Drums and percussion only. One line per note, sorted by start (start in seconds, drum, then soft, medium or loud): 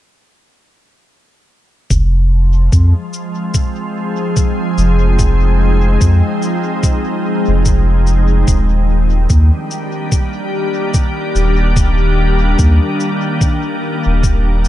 1.90 kick medium
1.90 cabasa soft
2.72 kick medium
2.72 cabasa soft
3.13 cabasa soft
3.54 kick medium
3.54 cabasa soft
4.36 kick medium
4.36 cabasa soft
4.78 cabasa soft
5.19 kick medium
5.19 cabasa soft
6.01 kick medium
6.01 cabasa soft
6.42 cabasa soft
6.83 kick loud
6.83 cabasa soft
7.65 kick medium
7.65 cabasa soft
8.07 cabasa soft
8.47 kick medium
8.47 cabasa soft
9.29 kick loud
9.29 cabasa soft
9.71 cabasa soft
10.12 kick loud
10.12 cabasa soft
10.94 kick loud
10.94 cabasa soft
11.36 cabasa soft
11.76 kick medium
11.76 cabasa soft
12.59 kick loud
12.59 cabasa soft
13.00 cabasa soft
13.41 kick loud
13.41 cabasa soft
14.23 kick medium
14.23 cabasa soft
14.65 cabasa soft